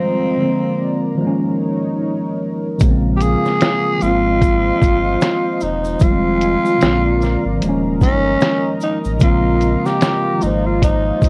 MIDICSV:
0, 0, Header, 1, 6, 480
1, 0, Start_track
1, 0, Tempo, 800000
1, 1688, Time_signature, 4, 2, 24, 8
1, 6775, End_track
2, 0, Start_track
2, 0, Title_t, "Analog synth pad"
2, 0, Program_c, 0, 89
2, 0, Note_on_c, 0, 65, 85
2, 0, Note_on_c, 0, 72, 79
2, 0, Note_on_c, 0, 75, 73
2, 0, Note_on_c, 0, 82, 90
2, 229, Note_off_c, 0, 75, 0
2, 230, Note_off_c, 0, 72, 0
2, 246, Note_on_c, 0, 70, 77
2, 246, Note_on_c, 0, 74, 75
2, 704, Note_off_c, 0, 65, 0
2, 722, Note_off_c, 0, 74, 0
2, 727, Note_on_c, 0, 63, 86
2, 727, Note_on_c, 0, 73, 78
2, 1678, Note_off_c, 0, 63, 0
2, 1678, Note_off_c, 0, 73, 0
2, 1689, Note_on_c, 0, 65, 91
2, 1689, Note_on_c, 0, 77, 78
2, 2385, Note_off_c, 0, 70, 0
2, 2401, Note_off_c, 0, 77, 0
2, 2406, Note_on_c, 0, 75, 82
2, 2408, Note_on_c, 0, 72, 76
2, 3582, Note_off_c, 0, 82, 0
2, 3589, Note_off_c, 0, 65, 0
2, 3605, Note_on_c, 0, 65, 82
2, 3606, Note_on_c, 0, 80, 80
2, 4070, Note_off_c, 0, 75, 0
2, 4071, Note_off_c, 0, 72, 0
2, 4082, Note_off_c, 0, 80, 0
2, 4087, Note_on_c, 0, 82, 95
2, 4088, Note_on_c, 0, 70, 70
2, 4088, Note_on_c, 0, 74, 73
2, 4557, Note_off_c, 0, 65, 0
2, 4563, Note_off_c, 0, 70, 0
2, 4563, Note_off_c, 0, 74, 0
2, 4568, Note_on_c, 0, 63, 84
2, 4569, Note_on_c, 0, 70, 78
2, 4570, Note_on_c, 0, 75, 77
2, 5518, Note_off_c, 0, 63, 0
2, 5524, Note_on_c, 0, 65, 81
2, 6232, Note_off_c, 0, 70, 0
2, 6232, Note_off_c, 0, 75, 0
2, 6246, Note_on_c, 0, 72, 76
2, 6246, Note_on_c, 0, 75, 81
2, 6775, Note_off_c, 0, 65, 0
2, 6775, Note_off_c, 0, 72, 0
2, 6775, Note_off_c, 0, 75, 0
2, 6775, Note_off_c, 0, 82, 0
2, 6775, End_track
3, 0, Start_track
3, 0, Title_t, "Tenor saxophone"
3, 0, Program_c, 1, 66
3, 0, Note_on_c, 1, 60, 94
3, 710, Note_off_c, 1, 60, 0
3, 1902, Note_on_c, 1, 67, 77
3, 1937, Note_on_c, 1, 68, 115
3, 1946, Note_off_c, 1, 67, 0
3, 2416, Note_on_c, 1, 65, 118
3, 2425, Note_off_c, 1, 68, 0
3, 3377, Note_on_c, 1, 63, 94
3, 3386, Note_off_c, 1, 65, 0
3, 3617, Note_on_c, 1, 65, 117
3, 3626, Note_off_c, 1, 63, 0
3, 4661, Note_off_c, 1, 65, 0
3, 4816, Note_on_c, 1, 61, 111
3, 5268, Note_off_c, 1, 61, 0
3, 5300, Note_on_c, 1, 63, 88
3, 5396, Note_off_c, 1, 63, 0
3, 5542, Note_on_c, 1, 65, 102
3, 5918, Note_on_c, 1, 67, 99
3, 5927, Note_off_c, 1, 65, 0
3, 6257, Note_on_c, 1, 63, 91
3, 6266, Note_off_c, 1, 67, 0
3, 6397, Note_on_c, 1, 65, 90
3, 6406, Note_off_c, 1, 63, 0
3, 6494, Note_off_c, 1, 65, 0
3, 6502, Note_on_c, 1, 63, 97
3, 6775, Note_off_c, 1, 63, 0
3, 6775, End_track
4, 0, Start_track
4, 0, Title_t, "Tine electric piano"
4, 0, Program_c, 2, 4
4, 0, Control_c, 2, 64, 127
4, 0, Note_on_c, 2, 51, 59
4, 0, Note_on_c, 2, 53, 62
4, 0, Note_on_c, 2, 55, 64
4, 0, Note_on_c, 2, 56, 61
4, 0, Note_on_c, 2, 60, 75
4, 225, Note_on_c, 2, 50, 62
4, 226, Note_off_c, 2, 53, 0
4, 234, Note_off_c, 2, 56, 0
4, 234, Note_on_c, 2, 53, 59
4, 239, Note_off_c, 2, 51, 0
4, 241, Note_on_c, 2, 56, 49
4, 248, Note_off_c, 2, 55, 0
4, 250, Note_on_c, 2, 58, 65
4, 252, Note_off_c, 2, 60, 0
4, 256, Control_c, 2, 64, 0
4, 259, Note_on_c, 2, 60, 65
4, 361, Control_c, 2, 64, 127
4, 692, Note_on_c, 2, 51, 82
4, 701, Note_off_c, 2, 53, 0
4, 709, Note_on_c, 2, 53, 67
4, 716, Note_off_c, 2, 50, 0
4, 719, Note_off_c, 2, 56, 0
4, 726, Note_on_c, 2, 56, 70
4, 729, Note_off_c, 2, 58, 0
4, 733, Note_off_c, 2, 60, 0
4, 736, Control_c, 2, 64, 0
4, 744, Note_on_c, 2, 58, 61
4, 761, Note_on_c, 2, 61, 88
4, 846, Control_c, 2, 64, 127
4, 1650, Note_off_c, 2, 51, 0
4, 1659, Note_off_c, 2, 53, 0
4, 1668, Note_off_c, 2, 56, 0
4, 1671, Note_on_c, 2, 49, 77
4, 1677, Note_off_c, 2, 58, 0
4, 1680, Note_on_c, 2, 53, 68
4, 1686, Note_off_c, 2, 61, 0
4, 1689, Note_on_c, 2, 56, 76
4, 1696, Control_c, 2, 64, 0
4, 1699, Note_on_c, 2, 58, 68
4, 1708, Note_on_c, 2, 59, 69
4, 1743, Note_off_c, 2, 59, 0
4, 1747, Note_on_c, 2, 60, 79
4, 1806, Control_c, 2, 64, 127
4, 2370, Note_on_c, 2, 51, 62
4, 2379, Note_off_c, 2, 53, 0
4, 2387, Note_on_c, 2, 53, 52
4, 2398, Note_off_c, 2, 56, 0
4, 2399, Note_off_c, 2, 49, 0
4, 2405, Note_on_c, 2, 56, 54
4, 2413, Note_off_c, 2, 58, 0
4, 2416, Control_c, 2, 64, 0
4, 2422, Note_on_c, 2, 58, 56
4, 2434, Note_off_c, 2, 60, 0
4, 2442, Note_on_c, 2, 60, 68
4, 2511, Control_c, 2, 64, 127
4, 3565, Note_off_c, 2, 51, 0
4, 3573, Note_off_c, 2, 53, 0
4, 3582, Note_off_c, 2, 56, 0
4, 3591, Note_off_c, 2, 58, 0
4, 3595, Note_on_c, 2, 51, 65
4, 3601, Note_off_c, 2, 60, 0
4, 3604, Note_on_c, 2, 53, 66
4, 3614, Note_on_c, 2, 55, 65
4, 3615, Control_c, 2, 64, 0
4, 3621, Note_on_c, 2, 56, 68
4, 3630, Note_on_c, 2, 58, 60
4, 3663, Note_off_c, 2, 58, 0
4, 3670, Note_on_c, 2, 60, 71
4, 3707, Control_c, 2, 64, 127
4, 4066, Note_off_c, 2, 53, 0
4, 4066, Note_on_c, 2, 48, 53
4, 4073, Note_on_c, 2, 53, 52
4, 4075, Note_off_c, 2, 56, 0
4, 4082, Note_off_c, 2, 51, 0
4, 4083, Note_on_c, 2, 56, 52
4, 4091, Note_off_c, 2, 55, 0
4, 4093, Note_on_c, 2, 58, 62
4, 4094, Note_off_c, 2, 60, 0
4, 4094, Control_c, 2, 64, 0
4, 4101, Note_on_c, 2, 60, 66
4, 4105, Note_on_c, 2, 50, 61
4, 4121, Note_off_c, 2, 48, 0
4, 4217, Control_c, 2, 64, 127
4, 4542, Note_on_c, 2, 51, 81
4, 4554, Note_off_c, 2, 53, 0
4, 4561, Note_on_c, 2, 53, 68
4, 4565, Note_off_c, 2, 56, 0
4, 4570, Note_off_c, 2, 58, 0
4, 4574, Note_off_c, 2, 60, 0
4, 4575, Control_c, 2, 64, 0
4, 4576, Note_off_c, 2, 50, 0
4, 4578, Note_on_c, 2, 56, 65
4, 4596, Note_on_c, 2, 58, 66
4, 4613, Note_on_c, 2, 61, 96
4, 4699, Control_c, 2, 64, 127
4, 5496, Note_off_c, 2, 51, 0
4, 5505, Note_off_c, 2, 53, 0
4, 5509, Note_on_c, 2, 49, 73
4, 5514, Note_off_c, 2, 56, 0
4, 5517, Note_on_c, 2, 53, 61
4, 5523, Note_off_c, 2, 58, 0
4, 5526, Note_on_c, 2, 56, 60
4, 5532, Note_off_c, 2, 61, 0
4, 5535, Control_c, 2, 64, 0
4, 5535, Note_on_c, 2, 58, 64
4, 5543, Note_on_c, 2, 60, 87
4, 5657, Control_c, 2, 64, 127
4, 6208, Note_on_c, 2, 51, 61
4, 6218, Note_off_c, 2, 53, 0
4, 6225, Note_on_c, 2, 53, 53
4, 6237, Note_off_c, 2, 56, 0
4, 6238, Note_off_c, 2, 49, 0
4, 6244, Note_on_c, 2, 56, 60
4, 6252, Note_off_c, 2, 58, 0
4, 6255, Control_c, 2, 64, 0
4, 6256, Note_off_c, 2, 60, 0
4, 6261, Note_on_c, 2, 58, 57
4, 6280, Note_on_c, 2, 72, 72
4, 6370, Control_c, 2, 64, 127
4, 6775, Note_off_c, 2, 51, 0
4, 6775, Note_off_c, 2, 53, 0
4, 6775, Note_off_c, 2, 56, 0
4, 6775, Note_off_c, 2, 58, 0
4, 6775, Note_off_c, 2, 72, 0
4, 6775, End_track
5, 0, Start_track
5, 0, Title_t, "Sub bass"
5, 0, Program_c, 3, 38
5, 1691, Note_on_c, 3, 34, 102
5, 2017, Note_off_c, 3, 34, 0
5, 2414, Note_on_c, 3, 32, 106
5, 2828, Note_off_c, 3, 32, 0
5, 2893, Note_on_c, 3, 31, 101
5, 3099, Note_off_c, 3, 31, 0
5, 3375, Note_on_c, 3, 28, 92
5, 3580, Note_off_c, 3, 28, 0
5, 3613, Note_on_c, 3, 29, 100
5, 3938, Note_off_c, 3, 29, 0
5, 4095, Note_on_c, 3, 34, 105
5, 4419, Note_off_c, 3, 34, 0
5, 4471, Note_on_c, 3, 32, 93
5, 4558, Note_off_c, 3, 32, 0
5, 4576, Note_on_c, 3, 27, 107
5, 4813, Note_on_c, 3, 31, 86
5, 4822, Note_off_c, 3, 27, 0
5, 5019, Note_off_c, 3, 31, 0
5, 5432, Note_on_c, 3, 33, 88
5, 5518, Note_off_c, 3, 33, 0
5, 5531, Note_on_c, 3, 34, 105
5, 5857, Note_off_c, 3, 34, 0
5, 6258, Note_on_c, 3, 32, 100
5, 6670, Note_off_c, 3, 32, 0
5, 6733, Note_on_c, 3, 31, 92
5, 6775, Note_off_c, 3, 31, 0
5, 6775, End_track
6, 0, Start_track
6, 0, Title_t, "Drums"
6, 1678, Note_on_c, 9, 82, 79
6, 1687, Note_on_c, 9, 36, 111
6, 1687, Note_on_c, 9, 42, 84
6, 1738, Note_off_c, 9, 82, 0
6, 1747, Note_off_c, 9, 36, 0
6, 1747, Note_off_c, 9, 42, 0
6, 1925, Note_on_c, 9, 42, 42
6, 1925, Note_on_c, 9, 82, 43
6, 1929, Note_off_c, 9, 82, 0
6, 1929, Note_on_c, 9, 82, 51
6, 1985, Note_off_c, 9, 42, 0
6, 1989, Note_off_c, 9, 82, 0
6, 2073, Note_on_c, 9, 82, 47
6, 2077, Note_on_c, 9, 38, 37
6, 2133, Note_off_c, 9, 82, 0
6, 2137, Note_off_c, 9, 38, 0
6, 2165, Note_on_c, 9, 42, 62
6, 2168, Note_on_c, 9, 82, 59
6, 2173, Note_on_c, 9, 38, 115
6, 2225, Note_off_c, 9, 42, 0
6, 2228, Note_off_c, 9, 82, 0
6, 2233, Note_off_c, 9, 38, 0
6, 2404, Note_on_c, 9, 82, 46
6, 2413, Note_off_c, 9, 82, 0
6, 2413, Note_on_c, 9, 82, 50
6, 2473, Note_off_c, 9, 82, 0
6, 2649, Note_on_c, 9, 36, 90
6, 2650, Note_on_c, 9, 42, 77
6, 2656, Note_on_c, 9, 82, 68
6, 2709, Note_off_c, 9, 36, 0
6, 2710, Note_off_c, 9, 42, 0
6, 2716, Note_off_c, 9, 82, 0
6, 2888, Note_on_c, 9, 36, 87
6, 2890, Note_on_c, 9, 82, 51
6, 2900, Note_off_c, 9, 82, 0
6, 2900, Note_on_c, 9, 42, 46
6, 2900, Note_on_c, 9, 82, 43
6, 2948, Note_off_c, 9, 36, 0
6, 2960, Note_off_c, 9, 42, 0
6, 2960, Note_off_c, 9, 82, 0
6, 3126, Note_on_c, 9, 82, 75
6, 3131, Note_on_c, 9, 38, 101
6, 3132, Note_on_c, 9, 42, 64
6, 3186, Note_off_c, 9, 82, 0
6, 3191, Note_off_c, 9, 38, 0
6, 3192, Note_off_c, 9, 42, 0
6, 3363, Note_on_c, 9, 82, 54
6, 3365, Note_off_c, 9, 82, 0
6, 3365, Note_on_c, 9, 82, 44
6, 3425, Note_off_c, 9, 82, 0
6, 3507, Note_on_c, 9, 82, 57
6, 3567, Note_off_c, 9, 82, 0
6, 3598, Note_on_c, 9, 82, 79
6, 3607, Note_on_c, 9, 36, 103
6, 3610, Note_on_c, 9, 42, 80
6, 3658, Note_off_c, 9, 82, 0
6, 3667, Note_off_c, 9, 36, 0
6, 3670, Note_off_c, 9, 42, 0
6, 3847, Note_on_c, 9, 42, 43
6, 3847, Note_on_c, 9, 82, 44
6, 3907, Note_off_c, 9, 42, 0
6, 3907, Note_off_c, 9, 82, 0
6, 3992, Note_on_c, 9, 82, 48
6, 4052, Note_off_c, 9, 82, 0
6, 4085, Note_on_c, 9, 82, 59
6, 4087, Note_on_c, 9, 42, 62
6, 4095, Note_on_c, 9, 38, 112
6, 4145, Note_off_c, 9, 82, 0
6, 4147, Note_off_c, 9, 42, 0
6, 4155, Note_off_c, 9, 38, 0
6, 4327, Note_on_c, 9, 82, 47
6, 4331, Note_off_c, 9, 82, 0
6, 4331, Note_on_c, 9, 82, 50
6, 4339, Note_on_c, 9, 38, 38
6, 4391, Note_off_c, 9, 82, 0
6, 4399, Note_off_c, 9, 38, 0
6, 4572, Note_on_c, 9, 42, 86
6, 4574, Note_on_c, 9, 82, 65
6, 4632, Note_off_c, 9, 42, 0
6, 4634, Note_off_c, 9, 82, 0
6, 4808, Note_on_c, 9, 82, 47
6, 4809, Note_on_c, 9, 36, 80
6, 4822, Note_off_c, 9, 82, 0
6, 4822, Note_on_c, 9, 42, 47
6, 4822, Note_on_c, 9, 82, 49
6, 4869, Note_off_c, 9, 36, 0
6, 4882, Note_off_c, 9, 42, 0
6, 4882, Note_off_c, 9, 82, 0
6, 5045, Note_on_c, 9, 82, 68
6, 5053, Note_on_c, 9, 38, 108
6, 5054, Note_on_c, 9, 42, 69
6, 5105, Note_off_c, 9, 82, 0
6, 5113, Note_off_c, 9, 38, 0
6, 5114, Note_off_c, 9, 42, 0
6, 5283, Note_on_c, 9, 82, 53
6, 5289, Note_off_c, 9, 82, 0
6, 5289, Note_on_c, 9, 82, 42
6, 5349, Note_off_c, 9, 82, 0
6, 5428, Note_on_c, 9, 82, 52
6, 5488, Note_off_c, 9, 82, 0
6, 5520, Note_on_c, 9, 82, 78
6, 5528, Note_on_c, 9, 36, 105
6, 5529, Note_on_c, 9, 42, 84
6, 5580, Note_off_c, 9, 82, 0
6, 5588, Note_off_c, 9, 36, 0
6, 5589, Note_off_c, 9, 42, 0
6, 5766, Note_on_c, 9, 42, 44
6, 5766, Note_on_c, 9, 82, 45
6, 5771, Note_off_c, 9, 82, 0
6, 5771, Note_on_c, 9, 82, 48
6, 5826, Note_off_c, 9, 42, 0
6, 5831, Note_off_c, 9, 82, 0
6, 5915, Note_on_c, 9, 82, 44
6, 5918, Note_on_c, 9, 38, 36
6, 5975, Note_off_c, 9, 82, 0
6, 5978, Note_off_c, 9, 38, 0
6, 6006, Note_on_c, 9, 42, 58
6, 6011, Note_on_c, 9, 82, 65
6, 6014, Note_on_c, 9, 38, 110
6, 6066, Note_off_c, 9, 42, 0
6, 6071, Note_off_c, 9, 82, 0
6, 6074, Note_off_c, 9, 38, 0
6, 6248, Note_on_c, 9, 82, 48
6, 6253, Note_off_c, 9, 82, 0
6, 6253, Note_on_c, 9, 82, 50
6, 6313, Note_off_c, 9, 82, 0
6, 6491, Note_on_c, 9, 36, 82
6, 6494, Note_on_c, 9, 42, 81
6, 6497, Note_on_c, 9, 82, 67
6, 6551, Note_off_c, 9, 36, 0
6, 6554, Note_off_c, 9, 42, 0
6, 6557, Note_off_c, 9, 82, 0
6, 6729, Note_on_c, 9, 82, 45
6, 6730, Note_on_c, 9, 36, 87
6, 6743, Note_off_c, 9, 82, 0
6, 6743, Note_on_c, 9, 42, 47
6, 6743, Note_on_c, 9, 82, 49
6, 6775, Note_off_c, 9, 36, 0
6, 6775, Note_off_c, 9, 42, 0
6, 6775, Note_off_c, 9, 82, 0
6, 6775, End_track
0, 0, End_of_file